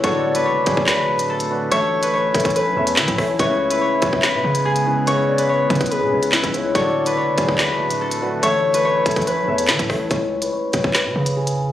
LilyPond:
<<
  \new Staff \with { instrumentName = "Soft synth lead" } { \time 4/4 \key cis \phrygian \tempo 4 = 143 r1 | r8 cis''8 b'8 a'8 cis''2 | e''2. r4 | r8 d''8 cis''8 b'8 gis'4 b'8 cis''8 |
d''2. r4 | r8 cis''8 b'8 a'8 cis''2 | r1 | }
  \new Staff \with { instrumentName = "Harp" } { \time 4/4 \key cis \phrygian cis''8. b'16 cis''4 b'4 a'8 r8 | cis''8. b'16 cis''4 b'4 e'4 | cis''8. b'16 cis''4 b'4 gis'8 r8 | cis''8. b'16 cis''4 b'4 e'4 |
cis''8. b'16 cis''4 b'4 a'8 r8 | cis''8. b'16 cis''4 b'4 e'4 | cis''8. b'16 cis''4 b'4 gis'8 r8 | }
  \new Staff \with { instrumentName = "Grand piano" } { \time 4/4 \key cis \phrygian <d d' fis' a'>4 r8 <d d' fis' gis'>4. r8 <d d' fis' b'>8 | <a a' cis'' e''>4 r8 <a a' cis'' e''>8. r16 <a a' cis'' e''>8. r16 <a a' cis'' e''>8 | <cis cis' e' b'>4 r8 <cis cis' e' cis''>4. r8 <cis cis' e' b'>8 | <cis cis' e' b'>4 r8 <cis cis' e' b'>8. r16 <cis cis' e' b'>8. r16 <cis cis' e' b'>8 |
<d d' fis' a'>4 r8 <d d' fis' gis'>4. r8 <d d' fis' b'>8 | <a a' cis'' e''>4 r8 <a a' cis'' e''>8. r16 <a a' cis'' e''>8. r16 <a a' cis'' e''>8 | r1 | }
  \new Staff \with { instrumentName = "Ambient pad" } { \time 4/4 \key cis \phrygian << { <d d' fis'>1 | <a cis'>1 | <cis gis b>1~ | <cis gis b>1 |
<d d' fis'>1 | <a cis'>1 | r1 | } \\ { a1 | e'1~ | e'1~ | e'1 |
a1 | e'1 | r1 | } >> }
  \new Staff \with { instrumentName = "808-style bass" } { \clef bass \time 4/4 \key cis \phrygian d,,4 fis,,8 d,,16 d,8 cis,,16 d,,4. | a,,4. a,,16 a,,8 b,,16 e,8 e16 a,16 a,,8 | cis,4 r8 cis,16 cis,8 cis16 cis4.~ | cis4. cis16 cis,8 cis16 cis,8. cis,8. |
d,,4 fis,,8 d,,16 d,8 cis,,16 d,,4. | a,,4. a,,16 a,,8 b,,16 e,8 e16 a,16 a,,8 | cis,4 r8 cis,16 cis,8 cis16 cis4. | }
  \new DrumStaff \with { instrumentName = "Drums" } \drummode { \time 4/4 <hh bd>8. hh16 r8 <hh bd>16 bd16 <hc hh sn>8. hh16 r16 hh8. | hh8. hh16 r8 <hh bd>32 hh32 <hh bd>32 hh32 hh8. hh16 <hc hh sn>16 <hh bd>16 <hho bd ss>8 | <hh bd>8. hh16 r8 <hh bd>16 bd16 <hc hh sn>8. hh16 r16 hh8. | hh8. hh16 r8 <hh bd>32 hh32 <hh bd>32 hh32 hh8. hh16 <hc hh sn>16 <hh bd>16 hh8 |
<hh bd>8. hh16 r8 <hh bd>16 bd16 <hc hh sn>8. hh16 r16 hh8. | hh8. hh16 r8 <hh bd>32 hh32 <hh bd>32 hh32 hh8. hh16 <hc hh sn>16 <hh bd>16 <hho bd ss>8 | <hh bd>8. hh16 r8 <hh bd>16 bd16 <hc hh sn>8. hh16 r16 hh8. | }
>>